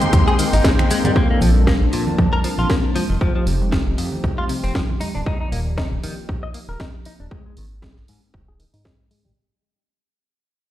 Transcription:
Already playing: analog synth pad G#3 A#3 C4 D#4 G4, string section G#3 G5 C6
0.02 closed hi-hat, low conga, cabasa, shaker
0.13 analog synth bass D#2, kick, closed hi-hat, cabasa, shaker
0.28 clean electric guitar G#4, shaker
0.38 clean electric guitar D#3, analog synth pad G#3 A#3 C4 D#4 G5, open hi-hat, cabasa, shaker
0.53 analog synth bass G#1, clean electric guitar D#4, open hi-hat, cabasa, shaker
0.64 clean electric guitar G#3, kick, snare, closed hi-hat, cabasa, shaker
0.79 finger snap, closed hi-hat, low conga, shaker
0.90 clean electric guitar G#3, open hi-hat, cabasa, shaker
1.04 analog synth bass G#2, clean electric guitar G3, closed hi-hat, low conga, cabasa, shaker
1.15 analog synth pad F3 A#3 C4 D4 A4, clean electric guitar A#3, kick, cabasa
1.30 clean electric guitar A#3
1.41 analog synth bass A#1, clean electric guitar F3, open hi-hat, high bongo, cabasa
1.55 high conga, cabasa
1.67 clean electric guitar A#3, kick, snare, cabasa
1.81 analog synth bass A#1
1.92 clean electric guitar A#2, analog synth pad F3 A#3 C4 D4 A5, open hi-hat, cabasa
2.07 low conga, cabasa
2.18 analog synth bass F2, kick, cabasa
2.33 clean electric guitar A#4, high conga
2.44 clean electric guitar F3, open hi-hat, cabasa
2.58 analog synth bass A#1, clean electric guitar F4, cabasa
2.70 clean electric guitar A#3, kick, snare, cabasa
2.96 clean electric guitar F3, open hi-hat, high conga, cabasa
3.09 analog synth bass F1, clean electric guitar D#3, cabasa
3.20 analog synth pad F3 A3 C4 D#4 G4, clean electric guitar F3, kick, cabasa
3.35 clean electric guitar F3
3.46 analog synth bass F1, clean electric guitar C3, open hi-hat, high bongo, cabasa
3.62 high conga, cabasa
3.72 clean electric guitar F3, kick, snare, cabasa
3.86 analog synth bass F1, high bongo
3.97 clean electric guitar F2, analog synth pad F3 A3 C4 D#4 G4, open hi-hat, cabasa
4.12 low conga, cabasa
4.24 analog synth bass C2, kick, cabasa
4.38 clean electric guitar F4, high conga
4.49 clean electric guitar C3, open hi-hat, cabasa
4.63 analog synth bass F1, clean electric guitar C4, open hi-hat, cabasa
4.75 clean electric guitar F3, kick, snare, cabasa
4.90 low conga
5.00 clean electric guitar D#4, open hi-hat, high conga, cabasa
5.14 analog synth bass D#1, clean electric guitar D4, low conga, cabasa
5.25 analog synth pad D#3 F3 A#3 G4 D5, clean electric guitar D#4, kick
5.41 clean electric guitar D#4
5.52 analog synth bass D#1, clean electric guitar A#3, open hi-hat
5.78 clean electric guitar D#4, kick, snare
5.92 analog synth bass D#1
6.02 clean electric guitar D#3, analog synth pad F3 A#3 D#4 G4, open hi-hat
6.29 analog synth bass A#1, kick
6.43 clean electric guitar D#5
6.54 clean electric guitar A#3, open hi-hat
6.69 analog synth bass D#1, clean electric guitar A#4
6.80 clean electric guitar D#4, kick, snare
7.05 clean electric guitar D#4, open hi-hat
7.20 analog synth bass D#1, clean electric guitar D4
7.30 analog synth pad G#3 A#3 C4 D#4 G4, clean electric guitar G#3, kick
7.46 clean electric guitar G#3
7.57 analog synth bass G#1, clean electric guitar D#3, open hi-hat
7.82 clean electric guitar G#3, kick, snare
7.97 analog synth bass G#1, snare
8.07 clean electric guitar G#2, analog synth pad G#3 A#3 C4 D#4 G5, open hi-hat
8.34 analog synth bass D#1, kick
8.48 clean electric guitar G#4
8.59 clean electric guitar D#3, open hi-hat
8.74 analog synth bass G#2, clean electric guitar D#4, open hi-hat
8.85 clean electric guitar G#3, kick, snare
9.11 clean electric guitar G#3, open hi-hat
9.25 analog synth bass G#1, clean electric guitar G3

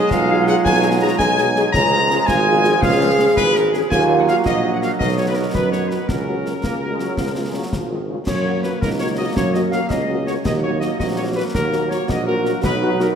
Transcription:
Already playing: trombone section F#3 G#3
0.10 tuba B1, euphonium F4, flute section F5, trumpet section F5, concert bass drum, snare
0.28 french horn section F#3 D#4 G#4
0.47 french horn section F#3 D#4 G#4, flute section F#5, trumpet section F#5, snare
0.64 tuba B1, flute section G#5, trumpet section G#5, concert bass drum, snare
0.83 french horn section F#3 D#4 G#4
1.01 french horn section F#3 D#4 G#4, trumpet section A#5, flute section A#5
1.18 tuba B1, euphonium D#4, trumpet section G#5, flute section G#5, concert bass drum, snare
1.38 french horn section F#3 D#4 G#4, snare
1.56 french horn section F#3 D#4 G#4, snare
1.72 tuba C#2, trombone section F3 G#3, euphonium C#4, trumpet section A#5, flute section A#5, concert bass drum, snare
1.92 french horn section F3 C#4 G#4
2.10 french horn section F3 C#4 G#4, snare
2.26 tuba G#1, euphonium F4, trumpet section G#5, flute section G#5, concert bass drum, snare
2.47 french horn section F3 C#4 G#4, euphonium F4
2.64 french horn section F3 C#4 G#4, euphonium F#4, snare
2.81 tuba C#2, euphonium G#4, trumpet section F5, flute section F5, concert bass drum, snare
3.01 french horn section F3 C#4 G#4
3.20 french horn section F3 C#4 G#4
3.36 tuba G#1, trumpet section B4, flute section B4, concert bass drum, snare
3.55 french horn section F3 C#4 G#4, trumpet section A#4, flute section A#4, snare
3.73 french horn section F3 C#4 G#4, trumpet section G#4, flute section G#4, snare
3.90 tuba D#2, trombone section F#3 A#3, euphonium F4, trumpet section G#5, flute section G#5, concert bass drum, snare, crash
4.10 french horn section F#3 A#3 F#4
4.18 trumpet section F#5, flute section F#5
4.28 french horn section F#3 A#3 F#4, flute section F5, trumpet section F5, snare
4.44 tuba A#1, trumpet section D#5, flute section D#5, concert bass drum, snare
4.63 french horn section F#3 A#3 F#4
4.73 flute section F#5, trumpet section F#5
4.81 french horn section F#3 A#3 F#4, trumpet section F5, flute section F5, snare
4.99 tuba B1, trombone section B3, euphonium D#4, trumpet section D#5, flute section D#5, concert bass drum, snare
5.18 french horn section F#3 B3 F#4, flute section C#5, trumpet section C#5
5.28 trumpet section B4, flute section B4
5.35 french horn section F#3 B3 F#4, trumpet section A#4, flute section A#4
5.54 tuba F#2, trumpet section B4, flute section B4, concert bass drum, snare
5.71 french horn section F#3 B3 F#4, trumpet section C#5, flute section C#5, snare
5.89 french horn section F#3 B3 F#4, trumpet section B4, flute section B4, snare
6.08 tuba C#2, trombone section F#3 C#4, euphonium C#4, trumpet section A#4, flute section A#4, concert bass drum, snare
6.28 french horn section F#3 A#3 F#4
6.45 french horn section F#3 A#3 F#4, snare
6.63 tuba C#2, trombone section A#3, concert bass drum, snare
6.82 french horn section F#3 A#3 F#4
6.91 trombone section G#3
6.99 trombone section F#3, french horn section F#3 A#3 F#4, snare
7.17 tuba C#2, trombone section F3, concert bass drum, snare
7.36 french horn section G#3 C#4 F4
7.44 trombone section G#3
7.54 trombone section F#3, french horn section G#3 C#4 F4
7.72 tuba G#1, trombone section F3, concert bass drum, snare
7.90 trombone section D#3, french horn section G#3 C#4 F4
8.09 trombone section C#3, french horn section G#3 C#4 F4
8.26 tuba F#2, trombone section F#3 A#3, flute section C#5, trumpet section C#5, concert bass drum, snare, crash
8.45 french horn section F#3 A#3 F#4
8.63 french horn section F#3 A#3 F#4, flute section B4, trumpet section B4, snare
8.81 tuba C#2, euphonium D#4, flute section A#4, trumpet section A#4, concert bass drum, snare
8.99 french horn section F#3 A#3 F#4, flute section C#5, trumpet section C#5
9.17 french horn section F#3 A#3 F#4, flute section D#5, trumpet section D#5
9.34 tuba F#2, euphonium C#4, flute section C#5, trumpet section C#5, concert bass drum, snare
9.53 french horn section F#3 A#3 F#4, flute section D#5, trumpet section D#5, snare
9.70 french horn section F#3 A#3 F#4, flute section F5, trumpet section F5, snare
9.89 tuba C#2, euphonium C#4, flute section D#5, trumpet section D#5, concert bass drum, snare
10.08 french horn section F#3 A#3 F#4
10.26 french horn section F#3 A#3 F#4, trumpet section C#5, flute section C#5, snare
10.45 tuba D#2, trombone section F#3 A#3, euphonium D#4, flute section D#5, trumpet section D#5, concert bass drum, snare, crash
10.62 french horn section F#3 A#3 F#4, trumpet section C#5, flute section C#5
10.80 french horn section F#3 A#3 F#4, trumpet section D#5, flute section D#5, snare
10.99 tuba A#1, euphonium F#4, flute section D#5, trumpet section D#5, concert bass drum, snare
11.17 french horn section F#3 A#3 F#4, trumpet section C#5, flute section C#5
11.36 french horn section F#3 A#3 F#4, trumpet section B4, flute section B4
11.53 tuba D#2, euphonium F#4, trumpet section A#4, flute section A#4, concert bass drum, snare
11.72 french horn section F#3 A#3 F#4, snare
11.90 french horn section F#3 A#3 F#4, flute section C#5, trumpet section C#5, snare
12.08 tuba A#1, trumpet section D#5, flute section D#5, concert bass drum, snare
12.26 french horn section F#3 A#3 F#4, trumpet section A#4, flute section A#4
12.45 french horn section F#3 A#3 F#4, snare
12.62 tuba B1, trombone section F#3 D#4, flute section B4, trumpet section B4, concert bass drum, snare, crash
12.81 french horn section F#3 D#4 F#4
12.99 french horn section F#3 D#4 F#4, flute section A#4, trumpet section A#4, snare

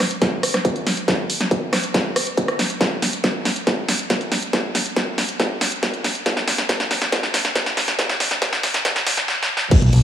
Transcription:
0.00 cross-stick, snare, open hi-hat
0.11 closed hi-hat
0.22 kick, snare, closed hi-hat
0.43 cross-stick, open hi-hat
0.54 cross-stick, snare, closed hi-hat
0.65 kick, closed hi-hat
0.76 closed hi-hat
0.87 snare, open hi-hat
0.97 closed hi-hat
1.08 kick, snare, closed hi-hat
1.30 open hi-hat
1.41 snare, closed hi-hat
1.51 kick, closed hi-hat
1.73 cross-stick, snare, open hi-hat
1.84 closed hi-hat
1.94 kick, snare, closed hi-hat
2.16 cross-stick, open hi-hat
2.27 closed hi-hat
2.38 kick, closed hi-hat
2.48 cross-stick, closed hi-hat
2.59 snare, open hi-hat
2.70 closed hi-hat
2.81 kick, snare, closed hi-hat
3.02 snare, open hi-hat
3.13 closed hi-hat
3.24 kick, snare, closed hi-hat
3.45 snare, open hi-hat
3.56 closed hi-hat
3.67 kick, snare, closed hi-hat
3.89 snare, open hi-hat
3.99 closed hi-hat
4.10 kick, snare, closed hi-hat
4.21 closed hi-hat
4.32 snare, open hi-hat
4.42 closed hi-hat
4.53 kick, snare, closed hi-hat
4.75 snare, open hi-hat
4.86 closed hi-hat
4.96 kick, snare, closed hi-hat
5.18 snare, open hi-hat
5.29 closed hi-hat
5.40 kick, snare, closed hi-hat
5.61 snare, open hi-hat
5.72 closed hi-hat
5.83 kick, snare, closed hi-hat
5.94 closed hi-hat
6.04 snare, open hi-hat
6.15 closed hi-hat
6.26 kick, snare, closed hi-hat
6.37 snare
6.48 snare, open hi-hat
6.58 snare, closed hi-hat
6.69 kick, snare, closed hi-hat
6.80 snare
6.91 snare, open hi-hat
7.02 snare, closed hi-hat
7.12 kick, snare, closed hi-hat
7.23 snare
7.34 snare, open hi-hat
7.45 snare, closed hi-hat
7.56 kick, snare, closed hi-hat
7.66 snare, closed hi-hat
7.77 snare, open hi-hat
7.88 snare, closed hi-hat
7.99 kick, snare, closed hi-hat
8.09 snare, closed hi-hat
8.20 snare, open hi-hat
8.31 snare, closed hi-hat
8.42 kick, snare, closed hi-hat
8.53 snare, closed hi-hat
8.63 snare, open hi-hat
8.74 snare, closed hi-hat
8.85 kick, snare, closed hi-hat
8.96 snare, closed hi-hat
9.07 snare, open hi-hat
9.17 snare, closed hi-hat
9.28 snare
9.43 snare
9.57 snare
9.71 kick, closed hi-hat, crash
9.82 analog synth bass B1, closed hi-hat
9.93 analog synth bass B1, open hi-hat

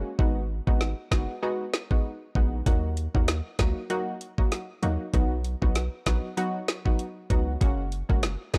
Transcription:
Already playing: synth stab G#3 A#3 C#4 F#4
0.19 808-style bass G#1, synth stab G#3 B3 D#4 F#4, kick
0.67 808-style bass G#1, synth stab G#3 B3 D#4 F#4, kick
0.81 snare
1.11 808-style bass F#1, synth stab G#3 B3 D#4 F#4, kick, snare
1.42 synth stab G#3 B3 D#4 F#4
1.74 snare
1.91 synth stab G#3 B3 D#4 F#4, kick
2.35 808-style bass A#1, synth stab G#3 B3 D#4 F#4, kick
2.66 808-style bass D#2, synth stab F#3 A#3 D#4 F#4, kick, closed hi-hat
2.97 closed hi-hat
3.14 808-style bass D#2, synth stab F#3 A#3 D#4 F#4, kick
3.28 snare, closed hi-hat
3.59 808-style bass C#2, synth stab F#3 A#3 D#4 F#4, kick, snare, closed hi-hat
3.90 synth stab F#3 A#3 D#4 F#4, closed hi-hat
4.21 closed hi-hat
4.38 synth stab F#3 A#3 D#4 F#4, kick
4.52 snare, closed hi-hat
4.82 808-style bass D#2, synth stab F#3 A#3 D#4 F#4, closed hi-hat
5.13 808-style bass B1, synth stab F#3 B3 D#4 F#4, kick, closed hi-hat
5.44 closed hi-hat
5.62 808-style bass B1, synth stab F#3 B3 D#4 F#4, kick
5.75 snare, closed hi-hat
6.06 808-style bass A#1, synth stab F#3 B3 D#4 F#4, kick, snare, closed hi-hat
6.37 synth stab F#3 B3 D#4 F#4, closed hi-hat
6.68 snare, closed hi-hat
6.85 synth stab F#3 B3 D#4 F#4, kick
6.99 closed hi-hat
7.30 808-style bass C#2, synth stab F#3 B3 D#4 F#4, kick, closed hi-hat
7.61 808-style bass F#1, synth stab G#3 A#3 C#4 F#4, kick, closed hi-hat
7.92 closed hi-hat
8.09 808-style bass F#1, synth stab G#3 A#3 C#4 F#4, kick
8.23 snare, closed hi-hat
8.53 808-style bass F1, synth stab G#3 A#3 C#4 F#4, kick, snare, closed hi-hat

